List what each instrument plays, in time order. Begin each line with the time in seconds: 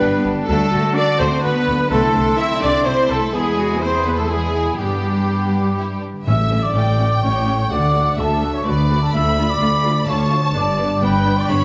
Already playing: harp G2 G3 D4 D5, french horn section G3 D4, cello section B3, violin section G4 B4, trumpet section B4, cor anglais B4, viola section B4
0.00 double bass section G1, clarinet D4, violin section D4, flute G5
0.18 harp G3
0.24 double bass section G1, violin section B3, flute A5
0.34 harp D3
0.46 french horn section F#3 D4, cello section A3, clarinet D4, violin section F#4 A4, cor anglais A4, trumpet section A4, viola section A4
0.50 double bass section D2, harp D3, violin section A3
0.65 harp D4
0.72 double bass section D2, violin section D4, clarinet F#4
0.95 cello section D4, harp F#4, cor anglais D5, trumpet section D5, viola section D5, violin section D5
1.18 double bass section D2, violin section A3 C5, cello section C4, cor anglais C5, trumpet section C5, viola section C5
1.28 harp A5
1.43 double bass section D2, cello section B3, violin section D4 B4, harp F#4, cor anglais B4, trumpet section B4, viola section B4
1.61 harp D4
1.67 double bass section D2, violin section A3
1.77 harp F#3
1.89 double bass section C2, harp C3, french horn section E3 B3, violin section A3 E4 A4, cello section A3, clarinet E4, viola section A4, trumpet section A4, cor anglais A4, flute C6
2.14 double bass section C2, violin section C4, clarinet D4
2.24 harp E4
2.39 clarinet C4, cello section E4, trumpet section E5, violin section E5, viola section E5, cor anglais E5
2.61 double bass section C2, violin section A3 D5, cello section D4, trumpet section D5, cor anglais D5, viola section D5
2.71 harp E5
2.84 double bass section C2, violin section C4 C5, cello section C4, clarinet E4, harp A4, trumpet section C5, viola section C5
2.88 cor anglais C5
3.03 harp B3
3.09 double bass section C2, cello section A3, violin section B3 A4, cor anglais A4, viola section A4, trumpet section A4
3.19 harp A3
3.32 harp E2, double bass section E2, french horn section E3 B3, cello section G#3, violin section B3 E4 G#4, clarinet E4, trumpet section G#4, cor anglais G#4, viola section G#4, flute B5
3.52 harp B3
3.59 clarinet F#4
3.67 harp E4
3.80 cello section C4, clarinet G#4, harp B4, violin section C5, trumpet section C5, cor anglais C5, viola section C5
4.06 cello section B3, violin section B4, trumpet section B4, viola section B4, cor anglais B4
4.15 violin section A4, cor anglais A4, trumpet section A4, harp E5
4.19 cello section A3, viola section A4
4.28 cello section G#3, violin section B3 E4 G#4, clarinet E4, trumpet section G#4, cor anglais G#4, viola section G#4, harp B4, flute B5
4.47 harp B3
4.54 clarinet E4
4.64 harp B2
4.77 double bass section G2, harp G2, french horn section D3 B3, cello section G3, violin section B3 D4 G4, clarinet D4, viola section G4, cor anglais G4, trumpet section G4
4.81 flute B5
4.97 harp B3
5.14 harp D4
5.29 violin section B3, harp B4
5.46 harp D4
5.63 harp D5
5.77 violin section E4, harp B4
5.95 harp B3
6.01 violin section D4
6.12 harp D3
6.25 double bass section A1, cello section A2, harp A2, timpani A2, viola section A3 C#4, violin section E5, trumpet section E5, flute E6
6.50 harp E3, viola section A3 C#4
6.62 violin section D5, trumpet section D5, flute D6
6.74 double bass section A1, cello section A2, harp A3, viola section A3 C#4, violin section G5
6.98 viola section A3 C#4, harp C#4
7.22 double bass section A1, cello section A2, viola section A3 C#4, violin section C#5, trumpet section C#5, harp C#5, flute C#6
7.46 viola section A3 C#4, harp C#4
7.58 violin section C#5, trumpet section C#5, flute C#6
7.70 cello section D2, double bass section D2, harp D3, viola section A3 F#4, trumpet section D5, violin section D5 F#5, flute D6
7.94 viola section A3 F#4, harp D4
8.17 double bass section D2, cello section D2, viola section A3 F#4, harp A3, trumpet section A4, violin section A4 E5, flute A5
8.43 viola section A3 F#4, harp F#4
8.53 trumpet section C#5, violin section C#5, flute C#6
8.65 double bass section D2, cello section D2, viola section A3 F#4, harp A4, trumpet section B4, violin section B4 D5
8.70 flute B5
8.90 viola section A3 F#4, harp F#4
9.01 trumpet section A4, violin section A4, flute A5
9.11 double bass section D2, cello section D2, harp D3, viola section A3 F4, violin section E5 B5, trumpet section E5
9.16 flute E6
9.38 viola section A3 F4, harp D4
9.49 violin section D5, trumpet section D5, flute D6
9.60 cello section D2, double bass section D2, viola section A3 F4, harp A3
9.83 viola section A3 F4, harp F4
10.07 cello section D2, double bass section D2, viola section A3 F4, violin section C#5 A5, trumpet section C#5, harp F5, flute C#6
10.30 viola section A3 F4, harp F4
10.44 violin section C#5, trumpet section C#5, flute C#6
10.54 double bass section G1, harp G2, cello section G2, viola section B3 D4, violin section D5, trumpet section D5, flute D6
10.78 harp D3, viola section B3 D4
11.02 double bass section G1, cello section G2, viola section B3 D4, harp B3, violin section B4 G5, trumpet section B4, flute B5
11.25 viola section B3 D4, harp D4
11.37 trumpet section D5, violin section D5, flute D6
11.47 double bass section G1, cello section G2, viola section B3 D4, harp B4, violin section C#5 B5, trumpet section C#5, flute C#6